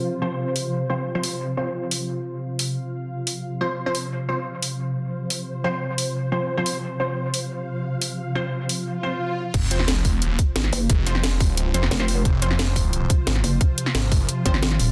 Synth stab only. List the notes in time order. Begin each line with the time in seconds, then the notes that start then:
0.22 F3 C4 C5
0.90 F3 C4 C5
1.15 F3 C4 C5
1.57 F3 C4 C5
3.61 F3 C4 C5
3.86 F3 C4 C5
4.29 F3 C4 C5
5.64 F3 C4 C5
6.32 F3 C4 C5
6.57 F3 C4 C5
7.00 F3 C4 C5
8.35 F3 C4 C5
9.03 F3 C4 C5
9.71 F3 C4 C5
11.06 F3 C4 C5
11.74 F3 C4 C5
12.00 F3 C4 C5
12.42 F3 C4 C5
14.46 F3 C4 C5